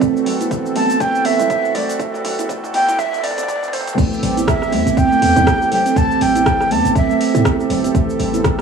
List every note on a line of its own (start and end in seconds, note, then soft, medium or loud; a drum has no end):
0.00 3.94 E3 medium
0.00 0.09 A3 medium
0.00 3.94 C4 medium
0.00 3.94 F#4 medium
0.00 3.94 A4 medium
0.00 kick loud
0.00 closed hi-hat soft
0.00 mid tom medium
0.00 shaker medium
0.17 shaker soft
0.26 0.77 A1 loud
0.26 0.40 E3 medium
0.26 open hi-hat medium
0.26 mid tom medium
0.26 low conga loud
0.41 0.46 E4 medium
0.41 closed hi-hat medium
0.41 high conga medium
0.41 shaker medium
0.51 kick loud
0.51 closed hi-hat soft
0.51 mid tom medium
0.51 shaker medium
0.65 0.71 E3 medium
0.65 shaker soft
0.76 0.89 A3 medium
0.76 1.02 A5 loud
0.76 open hi-hat medium
0.76 mid tom medium
0.76 high conga loud
0.76 low conga loud
0.90 0.98 A1 medium
0.90 closed hi-hat medium
0.90 shaker medium
1.00 1.08 A3 medium
1.00 1.27 G5 loud
1.00 kick loud
1.00 closed hi-hat soft
1.00 mid tom medium
1.00 high conga medium
1.00 shaker medium
1.15 shaker soft
1.25 1.36 E2 medium
1.25 1.39 E3 medium
1.25 1.76 E5 loud
1.25 open hi-hat medium
1.25 mid tom medium
1.25 high conga loud
1.39 1.47 E2 loud
1.39 1.45 E4 medium
1.39 closed hi-hat medium
1.39 high conga medium
1.39 low conga loud
1.39 shaker medium
1.50 kick loud
1.50 closed hi-hat soft
1.50 mid tom medium
1.50 shaker medium
1.64 1.70 E3 medium
1.64 shaker soft
1.75 1.88 A3 loud
1.75 2.00 D5 medium
1.75 open hi-hat medium
1.75 mid tom medium
1.75 low conga loud
1.89 closed hi-hat medium
1.89 shaker medium
2.00 2.07 A3 medium
2.00 kick loud
2.00 closed hi-hat soft
2.00 mid tom medium
2.00 shaker medium
2.14 mid tom medium
2.14 shaker soft
2.24 2.75 A1 loud
2.24 2.38 E3 medium
2.24 open hi-hat medium
2.24 mid tom medium
2.24 low conga loud
2.39 2.45 E4 medium
2.39 closed hi-hat medium
2.39 mid tom medium
2.39 high conga medium
2.39 shaker medium
2.49 2.57 A3 medium
2.49 kick loud
2.49 closed hi-hat soft
2.49 mid tom loud
2.49 shaker medium
2.64 mid tom medium
2.64 shaker soft
2.74 2.88 E3 medium
2.74 3.01 G5 loud
2.74 open hi-hat medium
2.74 mid tom medium
2.74 high conga loud
2.74 low conga medium
2.88 2.96 A1 medium
2.88 2.94 E4 medium
2.88 closed hi-hat medium
2.88 mid tom medium
2.88 shaker medium
2.98 3.07 A3 medium
2.98 3.25 E5 loud
2.98 kick loud
2.98 closed hi-hat soft
2.98 mid tom loud
2.98 low conga loud
2.98 shaker medium
3.06 mid tom medium
3.13 mid tom loud
3.13 shaker soft
3.18 mid tom medium
3.24 3.39 G1 medium
3.24 3.31 A3 medium
3.24 3.75 D5 loud
3.24 open hi-hat medium
3.24 mid tom loud
3.31 mid tom medium
3.38 3.94 A2 loud
3.38 closed hi-hat medium
3.38 mid tom medium
3.38 high conga medium
3.38 shaker medium
3.43 mid tom loud
3.48 3.56 A3 medium
3.48 kick loud
3.48 closed hi-hat soft
3.48 mid tom loud
3.48 shaker medium
3.56 mid tom medium
3.63 mid tom medium
3.63 shaker soft
3.68 mid tom loud
3.73 3.81 A3 medium
3.73 3.98 C5 medium
3.73 open hi-hat medium
3.73 mid tom loud
3.73 low conga loud
3.81 mid tom medium
3.88 closed hi-hat medium
3.88 mid tom loud
3.88 high conga medium
3.88 shaker medium
3.93 mid tom medium
3.98 4.18 A1 medium
3.98 8.62 E3 medium
3.98 4.06 A3 medium
3.98 8.62 C4 medium
3.98 8.62 G4 medium
3.98 8.62 A4 medium
3.98 kick loud
3.98 closed hi-hat soft
3.98 crash loud
3.98 shaker medium
4.13 shaker soft
4.23 4.74 A1 loud
4.23 4.36 E3 medium
4.23 open hi-hat medium
4.23 low conga loud
4.37 4.43 E4 medium
4.37 closed hi-hat medium
4.37 high conga medium
4.37 shaker medium
4.48 5.00 E5 medium
4.48 kick loud
4.48 cross-stick loud
4.48 closed hi-hat soft
4.48 shaker medium
4.62 4.68 E3 loud
4.62 cross-stick medium
4.62 shaker soft
4.72 4.83 E2 medium
4.72 4.85 A3 loud
4.72 open hi-hat medium
4.72 high conga loud
4.72 low conga loud
4.87 4.95 A1 medium
4.87 closed hi-hat medium
4.87 shaker medium
4.97 5.10 C4 loud
4.97 5.72 G5 loud
4.97 kick loud
4.97 closed hi-hat soft
4.97 high conga medium
4.97 shaker medium
5.11 5.21 A3 loud
5.11 shaker soft
5.22 5.33 E2 medium
5.22 open hi-hat loud
5.22 high conga loud
5.36 5.44 E2 loud
5.36 5.42 E4 medium
5.36 closed hi-hat medium
5.36 high conga medium
5.36 low conga loud
5.36 shaker medium
5.47 5.60 G4 medium
5.47 kick loud
5.47 cross-stick loud
5.47 closed hi-hat soft
5.47 shaker medium
5.62 shaker soft
5.72 5.84 A4 medium
5.72 5.99 G5 loud
5.72 open hi-hat medium
5.72 low conga loud
5.86 5.96 C4 loud
5.86 closed hi-hat medium
5.86 shaker medium
5.96 6.16 A1 loud
5.96 6.04 A3 medium
5.96 6.24 A5 loud
5.96 kick loud
5.96 closed hi-hat soft
5.96 shaker medium
6.11 shaker soft
6.21 6.72 A1 loud
6.21 6.35 E3 medium
6.21 6.73 G5 loud
6.21 open hi-hat medium
6.21 low conga loud
6.35 6.41 E4 medium
6.35 closed hi-hat medium
6.35 high conga medium
6.35 shaker medium
6.46 kick loud
6.46 cross-stick loud
6.46 closed hi-hat soft
6.46 shaker medium
6.60 6.66 E3 loud
6.60 cross-stick medium
6.60 shaker soft
6.71 6.82 E2 medium
6.71 6.84 A3 loud
6.71 6.96 A5 loud
6.71 open hi-hat medium
6.71 high conga loud
6.71 low conga loud
6.85 6.93 A1 medium
6.85 closed hi-hat medium
6.85 shaker medium
6.95 7.09 C4 loud
6.95 7.66 E5 medium
6.95 kick loud
6.95 closed hi-hat soft
6.95 low conga loud
6.95 shaker medium
7.10 7.20 A3 loud
7.10 shaker soft
7.21 open hi-hat medium
7.35 7.43 A2 loud
7.35 7.40 E4 medium
7.35 closed hi-hat medium
7.35 high conga loud
7.35 shaker medium
7.45 7.58 G4 medium
7.45 kick loud
7.45 cross-stick loud
7.45 closed hi-hat soft
7.45 shaker medium
7.60 shaker soft
7.70 7.90 G1 medium
7.70 7.83 A4 medium
7.70 open hi-hat medium
7.70 low conga loud
7.84 7.94 C4 loud
7.84 closed hi-hat medium
7.84 high conga medium
7.84 shaker medium
7.95 8.14 A1 loud
7.95 8.02 A3 medium
7.95 kick loud
7.95 closed hi-hat soft
7.95 shaker medium
8.10 shaker soft
8.19 8.62 A1 loud
8.19 8.33 E3 medium
8.19 open hi-hat medium
8.19 low conga loud
8.34 8.40 E4 medium
8.34 closed hi-hat medium
8.34 high conga medium
8.34 shaker medium
8.44 kick loud
8.44 cross-stick loud
8.44 closed hi-hat soft
8.44 shaker medium
8.58 8.62 E3 loud